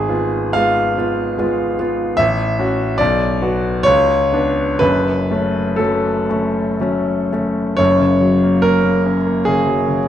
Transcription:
grand piano
Already playing: G#1 G#4
0.09 B3 F4
0.53 G#3 B3 F4 F5
0.97 B3 F4
1.38 G#3 B3 F4
1.79 B3 F4
2.17 A1 E5
2.59 C#4 F#4
2.98 B1 D5
3.42 B3 F#4
3.83 C#2 C#5
4.32 B3 D4
4.79 F#1 F#2 B4
5.31 A3 C#4
5.76 F#3 A3 C#4 A4
6.30 A3 C#4
6.80 F#3 A3 C#4
7.33 A3 C#4
7.77 F#1 F#2 C#5
8.00 C#3
8.21 F#3
8.43 A#3
8.62 C#4 A#4
8.85 A#3
9.06 C#4
9.27 A#3
9.45 C#3 G#4
9.66 F#3
9.87 C#3

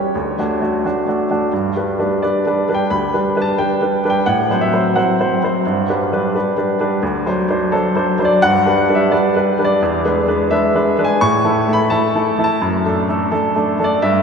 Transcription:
grand piano
Already playing: G3 C#4 G4 C#5
0.15 D2
0.39 A3 D4 F#4
0.61 A3 D4 F#4
0.85 A3 D4 F#4
1.08 A3 D4 F#4
1.31 A3 D4 F#4
1.53 G2
1.76 G3 D4 B4
1.99 G3 D4 B4
2.22 G3 D4 B4 D5
2.46 G3 D4 B4
2.69 G3 D4 B4
2.74 G5
2.90 D2 B5
3.14 G3 D4 B4
3.36 G3 D4 B4
3.42 A5
3.58 G3 D4 B4 G5
3.82 G3 D4 B4
4.05 G3 D4 B4
4.10 G5
4.26 A2 F#5
4.50 F#3 C4 C5
4.61 E5
4.73 F#3 C4 C5
4.96 F#3 C4 C5 F#5
5.20 F#3 C4 C5
5.43 F#3 C4 C5
5.67 G2
5.90 G3 D4 B4
6.13 G3 D4 B4
6.35 G3 D4 B4
6.57 G3 D4 B4
6.80 G3 D4 B4
7.03 D2
7.26 F#3 D4 C5
7.50 F#3 D4 C5
7.72 F#3 D4 A4 C5
7.96 F#3 D4 C5
8.19 F#3 D4 C5
8.25 D5
8.42 G2 F#5
8.66 G3 D4 B4
8.89 G3 D4 B4
8.95 E5
9.12 G3 D4 B4 D5
9.36 G3 D4 B4
9.59 G3 D4 B4
9.65 D5
9.82 E2
10.05 G#3 D4 B4
10.28 G#3 D4 B4
10.51 G#3 D4 B4 E5
10.75 G#3 D4 B4
10.98 G#3 D4 B4
11.04 G#5
11.21 A2 C#6
11.44 A3 E4 A4
11.68 A3 E4 A4
11.73 B5
11.90 A3 E4 A4 A5
12.15 A3 E4 A4
12.39 A3 E4 A4
12.44 A5
12.62 F#2
12.85 A3 D4 A4
13.09 A3 D4 A4
13.32 A3 D4 A4
13.56 A3 D4 A4
13.79 A3 D4 A4
13.84 D5
14.02 G2 E5

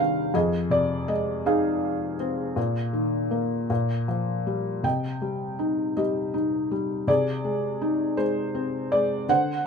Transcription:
felt piano
Already playing: C2 G2 C3 D#3 G3 F5 G5
0.34 F2 G#4 D#5
0.70 C3 D5
1.08 G#3 D#5
1.46 D#4 G#4 F5
2.20 C4
2.56 A#2
2.93 D#3
3.31 A#3
3.70 A#2
4.08 F3
4.47 G3
4.83 C3 D#5 G5
5.22 G3
5.59 D#4
5.97 G3 G4 D#5
6.34 D#4
6.71 G3
7.07 C3 G#4 D5
7.44 G#3
7.81 D#4
8.17 G#3 C5
8.55 C4
8.92 G#3 D5
9.29 D3 C5 F#5

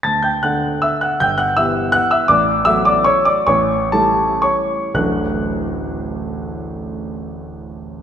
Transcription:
grand piano
0.03 D2 A5 A6
0.23 G5 G6
0.43 D3 D4 A4 F#5 F#6
0.82 E5 E6
1.01 F#5 F#6
1.20 G1 G5 G6
1.38 F#5 F#6
1.57 E3 B3 G4 E5 E6
1.92 F#5 F#6
2.11 E5 E6
2.28 A1 D5 D6
2.65 F#3 A3 F#4 E5 E6
2.85 D5 D6
3.04 C#5 C#6
3.25 D5 D6
3.47 A1 C#5 C#6
3.92 G3 A3 E4 A4 A5
4.42 C#5 C#6
4.94 D1 A1 F#3 A3 D4 F#4 F#6

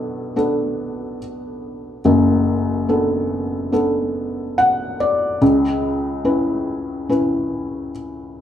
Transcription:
felt piano
Already playing: B1 B2 B3 D4 A4
0.36 B3 D4 A4
2.05 F#1 F#2
2.89 B3 D4 A4
3.72 B3 D4 A4
4.58 F#5
5.00 D5
5.41 C#2 C#3
6.25 C#4 E4 B4
7.09 C#4 E4 B4

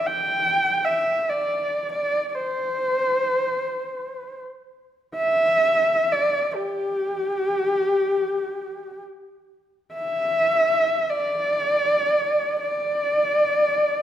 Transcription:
horsehead fiddle
0.06 G5
0.84 E5
1.29 D5
1.93 D5
2.29 D5
2.34 C5
5.16 E5
6.12 D5
6.55 G4
9.94 E5
11.09 D5
12.61 D5

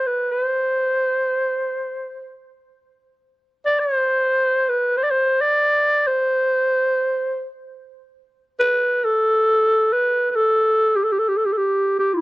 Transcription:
clarinet
0.07 B4
0.32 B4
0.43 C5
3.66 D5
3.80 C5
4.69 B4
4.97 C5
5.04 D5
5.11 C5
5.41 D5
6.08 C5
8.60 B4
9.05 A4
9.93 B4
10.31 B4
10.36 A4
10.96 G4
11.04 A4
11.13 G4
11.19 A4
11.29 G4
11.37 A4
11.46 G4
11.53 A4
11.58 G4
11.99 G4
12.14 E4 F4

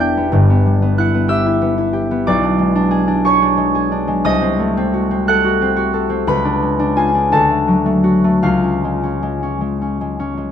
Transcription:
harp
Already playing: E1 E2 G3 B3 D4 B4 D5 E5 B5 D6 E6
0.00 G4 G5 G6
0.17 B3
0.32 G1 G2
0.50 B3
0.66 G3
0.82 B3
0.98 E4 F#5 F#6
1.14 B3
1.28 G4 E5 E6
1.46 E4
1.62 B3
1.78 E4
1.93 G4
2.11 B3
2.27 B1 D5 D6
2.43 D4
2.59 G#3
2.75 D4
2.91 G#4
3.08 D4
3.24 G#4 C#5 C#6
3.42 D4
3.57 G#3
3.75 G#4
3.92 D4
4.08 G#3
4.24 C2 D#5 D#6
4.41 C4
4.59 A3
4.77 C4
4.94 F#4
5.11 C4
5.28 A4 F#5 F#6
5.44 F#4
5.62 C4
5.76 F#4
5.93 A4
6.10 C4
6.27 C#2 B4 B5
6.45 D4
6.62 G#3
6.79 D4
6.96 F4 G#4 G#5
7.15 D4
7.32 D2 A4 A5
7.50 A3
7.68 F#3
7.86 A3
8.04 F#4
8.24 A3
8.43 C#2 F4 F5
8.64 C#4
8.84 G#3
9.03 C#4
9.23 G#3
9.43 C#4
9.61 G#3
9.82 C#4
10.01 G#3
10.20 C#4
10.37 G#3

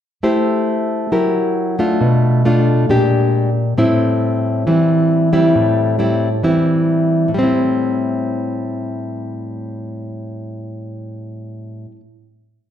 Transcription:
nylon-string guitar
0.23 A3 E4 G4 C5
1.12 F#3 E4 G4 A#4
1.79 A3 D4 F4
2.01 B2
2.45 A3 D4 F4
2.89 A#2 G#3 D4 G4
3.77 A2 G3 C4 E4
4.67 E3 G3 C4 E4
5.33 G3 C4 E4
5.55 A2
5.99 G3 C4 E4
6.43 E3 G3 C4 E4
7.28 A2
7.34 G3
7.39 C4
7.43 E4

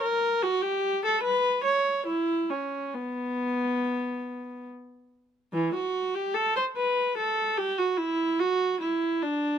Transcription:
viola
0.01 A#4
0.43 F#4
0.62 G4
1.05 A4
1.23 B4
1.63 C#5
2.06 E4
2.50 C#4
2.94 B3
5.53 E3
5.74 F#4
6.15 G4
6.34 A4
6.56 C5
6.76 B4
7.17 A4
7.58 G4
7.78 F#4
7.97 E4
8.39 F#4
8.80 E4
9.23 D4

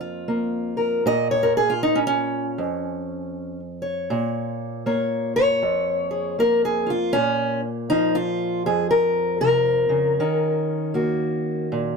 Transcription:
steel-string acoustic guitar
Already playing: F2 A#3
0.01 F4
0.28 A#3
0.77 A#4
1.06 A#2 D#5
1.31 C#5
1.43 A#4
1.57 G#4
1.70 F4
1.83 D#4
1.95 C#4
2.07 C#4
2.58 F2
3.82 C#5
4.10 A#2
4.86 A#3 C#5
5.36 C#5
5.62 F2
6.11 G#4
6.39 A#3 A#4
6.65 G#4
6.87 F4
7.13 A#2 C#4
7.90 F3 D#4
8.15 F4
8.66 F2 G#4
8.91 A#4
9.40 C3 A#4
9.89 C#3
10.20 D#3 C#4
10.94 A#3 F#4
11.72 A#2

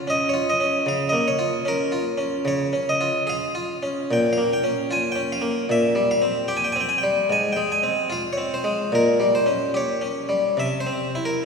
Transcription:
harpsichord
0.07 C#4 D#5
0.29 C#5
0.34 F4
0.50 D#5
0.60 C#4
0.86 C#3 F5
1.09 A#3 D#5
1.28 C#5
1.39 F4
1.65 C#4 A#4
1.92 F4
2.18 C#4
2.45 C#3 C#5
2.73 C#4
2.89 D#5
3.01 F4
3.27 G#4 F5
3.55 F4
3.83 C#4
4.11 A#2 G5
4.33 F5
4.38 A#3
4.53 G5
4.64 C#4
4.91 F4 G#5
5.12 C#4 G5
5.32 F5
5.41 A#3
5.69 A#2 E5
5.95 G3
6.11 F5
6.22 C4
6.48 G4 G5
6.57 G#5
6.64 G5
6.72 C4 G#5
6.80 G5
6.89 G#5
6.98 G5
7.03 G3
7.30 G#2 G#5
7.53 G#3 G5
7.72 G#5
7.83 C4
8.10 F4 F5
8.33 C#5
8.37 C4
8.54 C5
8.64 G#3
8.92 A#2 A#4
9.20 G3
9.35 C5
9.46 C#4
9.74 G4 C#5
10.02 C#4
10.29 G3
10.57 C3 E5
10.80 C5
10.87 C4
11.15 E4
11.25 A#4

